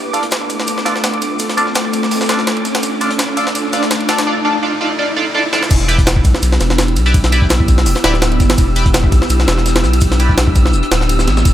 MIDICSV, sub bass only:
0, 0, Header, 1, 2, 480
1, 0, Start_track
1, 0, Tempo, 359281
1, 1862, Time_signature, 4, 2, 24, 8
1, 15412, End_track
2, 0, Start_track
2, 0, Title_t, "Sub bass"
2, 0, Program_c, 0, 38
2, 0, Note_on_c, 0, 28, 95
2, 645, Note_off_c, 0, 28, 0
2, 663, Note_on_c, 0, 35, 85
2, 780, Note_off_c, 0, 35, 0
2, 901, Note_on_c, 0, 35, 94
2, 1120, Note_off_c, 0, 35, 0
2, 1142, Note_on_c, 0, 28, 79
2, 1622, Note_on_c, 0, 35, 97
2, 1642, Note_off_c, 0, 28, 0
2, 2565, Note_off_c, 0, 35, 0
2, 2582, Note_on_c, 0, 35, 84
2, 2819, Note_on_c, 0, 28, 88
2, 2839, Note_off_c, 0, 35, 0
2, 2938, Note_off_c, 0, 28, 0
2, 3061, Note_on_c, 0, 26, 104
2, 3541, Note_on_c, 0, 31, 88
2, 3561, Note_off_c, 0, 26, 0
2, 3760, Note_off_c, 0, 31, 0
2, 3781, Note_on_c, 0, 28, 101
2, 4484, Note_off_c, 0, 28, 0
2, 4500, Note_on_c, 0, 35, 86
2, 4618, Note_off_c, 0, 35, 0
2, 4734, Note_on_c, 0, 35, 91
2, 4956, Note_off_c, 0, 35, 0
2, 4978, Note_on_c, 0, 28, 86
2, 5477, Note_off_c, 0, 28, 0
2, 7626, Note_on_c, 0, 28, 100
2, 8327, Note_off_c, 0, 28, 0
2, 8344, Note_on_c, 0, 35, 85
2, 8460, Note_off_c, 0, 35, 0
2, 8582, Note_on_c, 0, 35, 94
2, 8801, Note_off_c, 0, 35, 0
2, 8820, Note_on_c, 0, 28, 82
2, 9302, Note_on_c, 0, 35, 96
2, 9322, Note_off_c, 0, 28, 0
2, 10245, Note_off_c, 0, 35, 0
2, 10263, Note_on_c, 0, 35, 86
2, 10503, Note_on_c, 0, 28, 96
2, 10523, Note_off_c, 0, 35, 0
2, 10619, Note_off_c, 0, 28, 0
2, 10744, Note_on_c, 0, 26, 105
2, 11224, Note_on_c, 0, 31, 89
2, 11244, Note_off_c, 0, 26, 0
2, 11441, Note_off_c, 0, 31, 0
2, 11464, Note_on_c, 0, 28, 98
2, 12166, Note_off_c, 0, 28, 0
2, 12184, Note_on_c, 0, 35, 86
2, 12300, Note_off_c, 0, 35, 0
2, 12421, Note_on_c, 0, 35, 92
2, 12640, Note_off_c, 0, 35, 0
2, 12660, Note_on_c, 0, 28, 83
2, 13139, Note_on_c, 0, 35, 100
2, 13159, Note_off_c, 0, 28, 0
2, 14083, Note_off_c, 0, 35, 0
2, 14103, Note_on_c, 0, 35, 84
2, 14337, Note_on_c, 0, 28, 93
2, 14357, Note_off_c, 0, 35, 0
2, 14456, Note_off_c, 0, 28, 0
2, 14581, Note_on_c, 0, 26, 103
2, 15061, Note_on_c, 0, 33, 98
2, 15081, Note_off_c, 0, 26, 0
2, 15280, Note_off_c, 0, 33, 0
2, 15301, Note_on_c, 0, 28, 96
2, 15412, Note_off_c, 0, 28, 0
2, 15412, End_track
0, 0, End_of_file